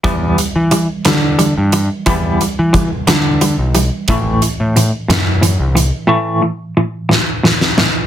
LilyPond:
<<
  \new Staff \with { instrumentName = "Clean electric guitar" } { \clef bass \time 6/8 \key e \minor \tempo 4. = 60 <e g b>8 <e g>8 <e g>8 <e g>8 <e g>8 <e g>8 | <e g b>8 <e g>8 <e g>8 <e g>8 <e g>8 <e g>8 | <a, e a>8 <a, e>8 <a, e>8 <a, e>8 <a, e>8 <a, e>8 | <a, e a>8 <a, e>8 <a, e>8 <a, e>8 <a, e>8 <a, e>8 | }
  \new Staff \with { instrumentName = "Picked electric bass" } { \clef bass \time 6/8 \key e \minor e,8 r16 e8 r16 d8. g,8 r16 | e,8 r16 e8 r16 d8. b,,8 r16 | a,,8 r16 a,8 r16 fis,8. c,8 r16 | r2. | }
  \new DrumStaff \with { instrumentName = "Drums" } \drummode { \time 6/8 <hh bd>8 hh8 hh8 <hh sn>8 hh8 hh8 | <hh bd>8 hh8 <hh bd>8 <hh sn>8 hh8 hh8 | <hh bd>8 hh8 hh8 <hh sn>8 hh8 hh8 | r4. sn8 sn16 sn16 sn8 | }
>>